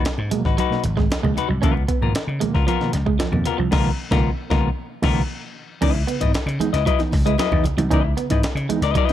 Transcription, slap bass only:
0.06 muted slap bass stroke soft
0.18 0.29 G#2 medium
0.45 0.56 G#1 medium
0.85 1.06 G#1 loud
1.10 muted slap bass stroke medium
1.24 1.35 C#2 loud
1.50 1.61 C2 medium
1.63 1.85 C#2 loud
2.01 2.13 G#2 medium
2.15 muted slap bass stroke soft
2.27 2.39 C#3 medium
2.55 2.66 C#2 medium
2.94 3.16 C#2 medium
3.20 muted slap bass stroke soft
3.32 3.43 F2 loud
3.59 3.70 C2 medium
3.72 3.90 C#2 loud
4.11 4.29 C#2 loud
4.50 4.68 C#2 loud
5.03 5.21 C#2 medium
5.82 6.04 C#2 loud
6.22 6.32 G#2 medium
6.34 muted slap bass stroke soft
6.46 6.58 C#3 medium
6.73 6.84 C#2 medium
7.13 7.35 C#2 medium
7.38 muted slap bass stroke medium
7.52 7.63 E2 loud
7.78 7.89 C2 medium
7.91 8.13 C#2 loud
8.31 8.42 G#2 medium
8.43 muted slap bass stroke soft
8.55 8.67 C#3 medium
8.82 8.93 C#2 medium

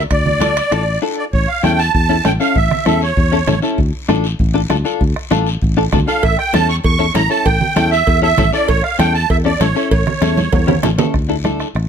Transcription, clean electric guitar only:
0.40 0.52 D4 medium
0.40 0.52 F4 medium
0.40 0.52 A4 medium
0.71 0.82 D4 medium
0.71 0.83 F4 medium
0.71 0.83 A4 medium
1.02 1.24 D4 medium
1.02 1.24 F4 medium
1.02 1.24 A4 medium
1.63 1.80 C#4 medium
1.63 1.80 E4 medium
1.63 1.80 A4 medium
2.09 2.15 C#4 medium
2.09 2.15 E4 medium
2.09 2.15 A4 medium
2.25 2.30 C#4 medium
2.25 2.30 E4 medium
2.25 2.31 A4 medium
2.40 2.56 C#4 medium
2.40 2.56 E4 medium
2.40 2.57 A4 medium
2.86 3.02 C#4 medium
2.86 3.02 E4 medium
2.86 3.03 A4 medium
3.32 3.38 C#4 medium
3.32 3.38 E4 medium
3.32 3.38 A4 medium
3.47 3.53 C#4 medium
3.47 3.53 E4 medium
3.47 3.53 A4 loud
3.62 3.78 C#4 medium
3.62 3.78 E4 medium
3.62 3.78 A4 medium
4.08 4.25 D4 medium
4.08 4.25 F4 medium
4.08 4.25 A4 loud
4.54 4.60 D4 medium
4.54 4.60 F4 medium
4.54 4.60 A4 medium
4.70 4.75 D4 medium
4.70 4.75 F4 medium
4.70 4.76 A4 medium
4.85 5.01 D4 medium
4.85 5.01 F4 medium
4.85 5.02 A4 medium
5.31 5.47 D4 medium
5.31 5.47 F4 medium
5.31 5.48 A4 medium
5.77 5.83 D4 medium
5.77 5.83 F4 medium
5.77 5.83 A4 medium
5.92 5.98 D4 medium
5.92 5.98 F4 medium
5.92 5.98 A4 medium
6.07 6.23 D4 medium
6.07 6.23 F4 medium
6.07 6.23 A4 medium
6.54 6.70 C#4 medium
6.54 6.70 E4 medium
6.54 6.70 A4 medium
6.99 7.05 C#4 medium
6.99 7.05 E4 medium
6.99 7.05 A4 medium
7.14 7.20 C#4 medium
7.14 7.21 E4 medium
7.14 7.21 A4 medium
7.30 7.46 C#4 medium
7.30 7.46 E4 medium
7.30 7.47 A4 medium
7.76 7.93 C#4 medium
7.76 7.93 E4 medium
7.76 7.93 A4 medium
8.22 8.28 C#4 medium
8.22 8.28 E4 medium
8.22 8.28 A4 medium
8.38 8.43 C#4 medium
8.38 8.44 E4 medium
8.38 8.44 A4 medium
8.53 8.69 C#4 medium
8.53 8.69 E4 medium
8.53 8.70 A4 medium
8.99 9.15 C#4 medium
8.99 9.15 E4 medium
8.99 9.16 A4 medium
9.45 9.51 C#4 medium
9.45 9.51 E4 medium
9.45 9.51 A4 medium
9.60 9.66 C#4 medium
9.60 9.66 E4 medium
9.60 9.66 A4 medium
9.75 9.92 C#4 medium
9.75 9.92 E4 medium
9.75 9.92 A4 medium
10.22 10.38 C#4 medium
10.22 10.38 E4 medium
10.22 10.38 A4 medium
10.67 10.73 C#4 medium
10.67 10.73 E4 medium
10.67 10.73 G4 medium
10.83 10.88 C#4 medium
10.83 10.89 E4 medium
10.83 10.89 A4 loud
10.98 11.14 C#4 medium
10.98 11.14 E4 medium
10.98 11.14 A4 medium
11.29 11.34 D4 medium
11.29 11.35 E4 medium
11.29 11.35 A4 medium
11.44 11.66 D4 medium
11.44 11.66 E4 medium
11.44 11.66 A4 medium

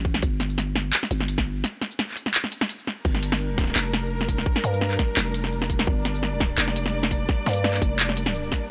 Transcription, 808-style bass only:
0.00 0.21 A1 loud
0.23 0.92 G1 loud
1.11 1.64 G1 loud
3.05 3.74 G1 loud
3.76 4.45 F1 loud
4.64 4.98 G2 medium
5.17 5.86 F1 loud
5.87 6.57 G1 loud
6.58 7.27 F1 loud
7.46 7.80 G2 loud
7.82 8.51 F1 loud

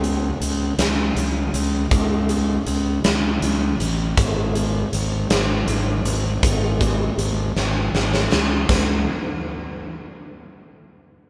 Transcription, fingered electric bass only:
0.00 0.30 C#2 medium
0.40 0.73 C#2 medium
0.78 1.11 C#2 medium
1.16 1.48 C#2 medium
1.53 1.86 C#2 medium
1.91 2.56 C#2 medium
2.66 2.99 C#2 medium
3.05 3.37 C#2 medium
3.42 3.75 C#2 medium
3.80 4.13 A1 medium
4.17 4.82 G#1 medium
4.93 5.25 G#1 medium
5.30 5.63 G#1 medium
5.68 6.00 G#1 medium
6.05 6.38 G#1 medium
6.43 7.08 G#1 medium
7.18 7.51 G#1 medium
7.56 7.89 G#1 medium
7.94 8.26 G#1 medium
8.31 8.64 C#2 medium
8.69 9.04 C#2 loud

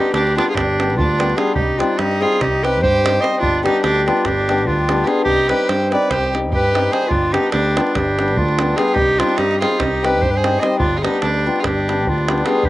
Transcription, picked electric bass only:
0.14 0.39 D2 medium
0.55 0.98 G1 loud
0.98 1.33 D2 medium
1.56 1.81 C2 medium
1.99 2.24 G2 medium
2.41 2.83 C2 loud
2.83 3.18 G2 medium
3.42 3.67 G1 medium
3.84 4.09 D2 medium
4.26 4.69 G1 loud
4.69 5.03 D2 medium
5.26 5.51 C2 medium
5.69 5.94 G2 medium
6.11 6.53 C2 medium
6.53 6.88 G2 medium
7.11 7.36 G1 medium
7.54 7.79 D2 medium
7.96 8.38 G1 loud
8.38 8.73 D2 medium
8.96 9.21 C2 medium
9.39 9.64 G2 medium
9.81 10.23 C2 medium
10.23 10.57 G2 medium
10.80 11.06 G1 loud
11.23 11.48 D2 medium
11.65 12.08 G1 medium
12.08 12.42 D2 medium
12.64 12.69 G1 medium

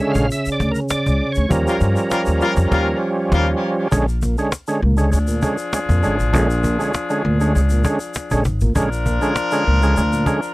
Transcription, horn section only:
1.67 1.76 G3 medium
1.67 1.77 F4 medium
1.67 1.77 A#4 medium
2.11 2.21 G3 medium
2.11 2.22 F4 medium
2.11 2.21 A#4 medium
2.41 2.52 G3 loud
2.41 2.52 F4 loud
2.41 2.52 A#4 loud
2.71 2.88 G3 loud
2.71 2.88 F4 loud
2.71 2.87 A#4 loud
3.33 3.48 G3 loud
3.33 3.49 F4 loud
3.33 3.49 A#4 loud
5.13 8.41 F3 medium
5.13 8.41 D4 medium
5.13 8.41 G#4 medium
8.76 10.54 F3 loud
8.76 10.54 D4 medium
8.76 10.54 A#4 loud

